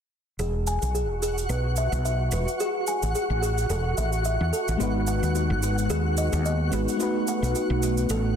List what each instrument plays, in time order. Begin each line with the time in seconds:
0.39 fretless electric bass E1, synth texture F#4 F#5, kalimba G#4, cabasa
0.67 kalimba G#5, cabasa
0.82 fretless electric bass B1, cabasa
0.95 kalimba G#4, cabasa
1.10 fretless electric bass E1
1.22 kalimba G#4, cabasa
1.38 cabasa
1.49 fretless electric bass B1, kalimba B4, cabasa
1.76 kalimba E5, cabasa
1.92 fretless electric bass B1, cabasa
2.05 kalimba E5, cabasa
2.32 fretless electric bass E1, kalimba B4, cabasa
2.48 cabasa
2.60 kalimba G#4, cabasa
2.87 kalimba G#5, cabasa
3.03 fretless electric bass A1, cabasa
3.15 kalimba G#4, cabasa
3.30 fretless electric bass A1
3.42 kalimba G#4, cabasa
3.58 cabasa
3.69 fretless electric bass E1, kalimba A4, cabasa
3.98 fretless electric bass A1, kalimba E5, cabasa
4.13 cabasa
4.25 kalimba E5, cabasa
4.41 fretless electric bass E2
4.53 kalimba A4, cabasa
4.68 fretless electric bass A1, cabasa
4.77 fretless electric bass G#1, fm electric piano G#3 B3 D#4, kalimba F#4, cabasa
4.81 fm electric piano F#4 B4
5.07 kalimba F#5, cabasa
5.23 fretless electric bass D#2, cabasa
5.35 kalimba F#4, cabasa
5.50 fretless electric bass G#1
5.63 kalimba F#4, cabasa
5.78 cabasa
5.90 fretless electric bass D#2, kalimba G#4, cabasa
6.17 kalimba D#5, cabasa
6.33 fretless electric bass D#2, cabasa
6.46 kalimba D#5, cabasa
6.71 fretless electric bass G#1, fm electric piano G#3 B3 D#4 F#4 B4, kalimba G#4, cabasa
6.88 cabasa
6.97 fm electric piano A3 B3 D#4, kalimba F#4, cabasa
7.02 fm electric piano F#4 B4
7.28 kalimba F#5, cabasa
7.42 fretless electric bass B1, cabasa
7.55 kalimba F#4, cabasa
7.70 fretless electric bass B1
7.83 kalimba F#4, cabasa
7.97 cabasa
8.10 fretless electric bass A1, kalimba A4, cabasa